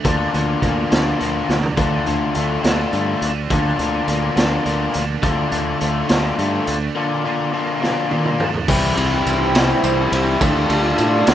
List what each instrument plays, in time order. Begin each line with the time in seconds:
Already playing: overdriven electric guitar D4
0.04 fingered electric bass D2, overdriven electric guitar D3 A#3 D4 F4, kick, closed hi-hat
0.34 fingered electric bass D2, overdriven electric guitar D3 A#3 D4 F4, closed hi-hat
0.62 fingered electric bass D2, overdriven electric guitar D3 A#3 D4 F4, kick, closed hi-hat
0.90 fingered electric bass D2, overdriven electric guitar D3 A#3 D4 F4, snare, closed hi-hat
1.19 fingered electric bass D2, overdriven electric guitar D3 A#3 D4 F4, closed hi-hat
1.49 fingered electric bass D2, overdriven electric guitar D4, snare
1.63 floor tom
1.77 fingered electric bass D2, overdriven electric guitar D3 A3 D4 F4, kick, closed hi-hat
2.06 fingered electric bass D2, overdriven electric guitar D3 A3 D4 F4, closed hi-hat
2.34 fingered electric bass D2, overdriven electric guitar D3 A3 D4 F4, closed hi-hat
2.63 fingered electric bass D2, overdriven electric guitar D3 A3 D4 F4, snare, closed hi-hat
2.92 fingered electric bass G2, overdriven electric guitar D3 A3 D4 F4, closed hi-hat
3.22 fingered electric bass D2, overdriven electric guitar D4, closed hi-hat
3.50 fingered electric bass D2, overdriven electric guitar D3 A#3 D4 F4, kick, closed hi-hat
3.79 fingered electric bass D2, overdriven electric guitar D3 A#3 D4 F4, closed hi-hat
4.08 fingered electric bass D2, overdriven electric guitar D3 A#3 D4 F4, closed hi-hat
4.36 fingered electric bass D2, overdriven electric guitar D3 A#3 D4 F4, snare, closed hi-hat
4.65 fingered electric bass D2, overdriven electric guitar D3 A#3 D4 F4, closed hi-hat
4.93 fingered electric bass D2, overdriven electric guitar D4, closed hi-hat
5.22 fingered electric bass D2, overdriven electric guitar D3 A3 D4 F4, kick, closed hi-hat
5.52 fingered electric bass D2, overdriven electric guitar D3 A3 D4 F4, closed hi-hat
5.80 fingered electric bass D2, overdriven electric guitar D3 A3 D4 F4, closed hi-hat
6.09 fingered electric bass D2, overdriven electric guitar D3 A3 D4 F4, snare, closed hi-hat
6.38 fingered electric bass G2, overdriven electric guitar D3 A3 D4 F4, closed hi-hat
6.67 fingered electric bass D2, overdriven electric guitar D4, closed hi-hat
6.95 overdriven electric guitar D3 A#3 D4 F4
7.24 overdriven electric guitar D3 A#3 D4 F4
7.53 overdriven electric guitar D3 A#3 D4 F4
7.82 overdriven electric guitar D3 A#3 D4 F4, snare
8.11 overdriven electric guitar D3 A#3 D4 F4, high tom
8.25 mid tom
8.39 overdriven electric guitar D4, mid tom
8.54 floor tom
8.68 fingered electric bass C2, overdriven electric guitar C3 E3 G3 C4 E4, analog synth pad E4 C5 G5, kick, crash, tambourine
8.97 fingered electric bass C2, overdriven electric guitar C3 E3 G3 C4 E4, ride
9.26 fingered electric bass C2, ride, tambourine
9.54 overdriven electric guitar C3 E3 G3 C4 E4, snare, ride
9.83 fingered electric bass C2, overdriven electric guitar C3 E3 G3 C4 E4, ride, tambourine
10.12 fingered electric bass C2, overdriven electric guitar C3 E3 G3 C4 E4, ride
10.41 fingered electric bass D2, overdriven electric guitar D3 A3 D4 F4, analog synth pad F4 D5 A5, kick, ride, tambourine
10.70 fingered electric bass D2, overdriven electric guitar D3 A3 D4 F4, ride
10.98 fingered electric bass A2, ride, tambourine
11.27 fingered electric bass D2, overdriven electric guitar D3 A3 D4 F4, snare, ride